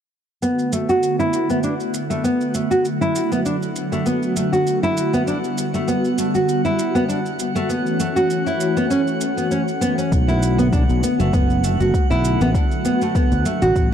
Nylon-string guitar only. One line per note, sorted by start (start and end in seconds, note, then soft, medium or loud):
0.42 0.71 B3 medium
0.73 0.88 A3 medium
0.89 1.18 F#4 medium
1.19 1.48 E4 medium
1.50 1.58 B3 medium
1.64 1.73 D4 medium
2.10 2.23 A3 medium
2.24 2.53 B3 medium
2.54 2.70 A3 medium
2.71 2.85 F#4 medium
3.01 3.30 E4 medium
3.32 3.39 B3 medium
3.45 3.55 D4 medium
3.92 4.05 A3 medium
4.06 4.35 B3 medium
4.36 4.52 A3 medium
4.53 4.81 F#4 medium
4.83 5.12 E4 medium
5.13 5.21 B3 medium
5.27 5.37 D4 medium
5.74 5.87 A3 medium
5.88 6.17 B3 medium
6.18 6.34 A3 medium
6.35 6.63 F#4 medium
6.65 6.94 E4 medium
6.95 7.03 B3 medium
7.09 7.18 D4 medium
7.55 7.69 A3 medium
7.69 7.98 B3 medium
8.00 8.16 A3 medium
8.16 8.45 F#4 medium
8.47 8.75 E4 medium
8.77 8.85 B3 medium
8.90 9.00 C#4 medium
9.37 9.50 B3 medium
9.51 9.61 C#4 medium
9.81 9.97 B3 loud
9.98 10.11 C#4 medium
10.28 10.57 E4 medium
10.58 10.66 B3 medium
10.73 10.82 D4 medium
11.03 11.18 B3 medium
11.20 11.33 A3 medium
11.33 11.62 B3 medium
11.64 11.79 A3 medium
11.80 12.09 F#4 medium
12.10 12.39 E4 medium
12.41 12.49 B3 medium
12.55 12.64 D4 medium
12.85 13.00 B3 medium
13.02 13.15 A3 medium
13.15 13.44 B3 medium
13.45 13.61 A3 medium
13.62 13.91 F#4 medium